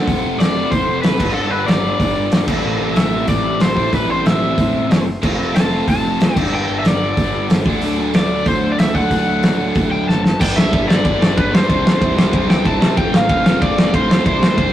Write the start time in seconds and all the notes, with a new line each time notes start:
0.07 F1 F2 C3 F3 A3 C4, kick, open hi-hat
0.24 F1
0.38 F1 D5, snare, open hi-hat
0.71 F1 C5, kick, open hi-hat
0.87 F1
1.02 F1 B4, snare, open hi-hat
1.18 G1 G2 D3 G3 B3 D4, kick, crash
1.34 G1 A4
1.50 G1 B4
1.66 G1 D5, snare, open hi-hat
2.00 G1, kick, open hi-hat
2.16 G1
2.32 G1, snare, open hi-hat
2.47 A1 A2 E3 A3 C4 E4, kick, crash
2.64 A1
2.80 A1
2.96 A1 E5, snare, open hi-hat
3.28 A1 D5, kick, open hi-hat
3.44 A1
3.60 A1 C5, snare, open hi-hat
3.75 A2 E3 A3 C4 E4, kick
3.93 A1 B4, kick, open hi-hat
4.09 A1 C5
4.25 A1 E5, snare, open hi-hat
4.58 A1, kick, open hi-hat
4.73 A1
4.90 F#1, snare, open hi-hat
5.22 F1 F3 A3 C4 F4, kick, crash
5.38 F1
5.54 F1 A5, snare, open hi-hat
5.88 F1 A5, kick, open hi-hat
6.03 F1
6.20 F1, snare, open hi-hat
6.35 G1 G2 D3 G3 B3 D4 G5, kick, crash
6.52 G1 G5
6.68 G1
6.79 E5
6.84 G1 D5, snare, open hi-hat
7.17 G1, kick, open hi-hat
7.33 G1
7.50 G1, snare, open hi-hat
7.65 D2 D3 F#3 A3 D4, kick
7.82 D2, open hi-hat
7.98 D2
8.14 D2 D5, snare, open hi-hat
8.46 D2 C5, kick, open hi-hat
8.63 D2
8.72 D5
8.78 D2 E5, snare, open hi-hat
8.94 D3 F#3 A3 D4 F#5, kick
9.11 D2, kick, open hi-hat
9.27 D2
9.43 D2, snare, open hi-hat
9.75 D2, kick, open hi-hat
9.91 D2 G5
10.08 F#1 A5, snare
10.24 A5, snare
10.39 G1 G2 D3 G3 B3 D4 G5, kick, crash
10.56 C2 E5, snare
10.72 G1 G2 D3 G3 B3 D4, kick, ride
10.87 G1 G2 D3 G3 B3 D4 D5, snare
11.05 G1 G2 D3 G3 B3 D4, kick, ride
11.22 snare
11.37 G1 G2 D3 G3 B3 D4 B4, kick, ride
11.53 G2 D3 G3 B3 D4 C5, snare
11.69 C2 C3 G3 C4 E4, kick, ride
11.85 E2, snare
12.01 C2 C3 G3 C4 E4, kick, ride
12.17 C2 C3 G3 C4 E4, snare
12.33 C2 C3 G3 C4 E4, kick, ride
12.50 G5, snare
12.65 C2 C3 G3 C4 E4 A5, kick, ride
12.80 C3 G3 C4 E4, snare
12.97 F1 F3 A3 C4 F4 G5, kick, ride
13.13 A1 F5, snare
13.29 F1 F3 A3 C4 F4, kick, ride
13.45 F1 F3 A3 C4 F4, snare
13.61 F1 F3 A3 C4 F4 D5, kick, ride
13.78 snare
13.93 F1 F3 A3 C4 F4 C5, kick, ride
14.10 F2 F3 A3 C4 F4, snare
14.25 C2 C3 G3 C4 E4 C5, kick, ride
14.42 E2, snare
14.57 C2 C3 G3 C4 E4, kick, ride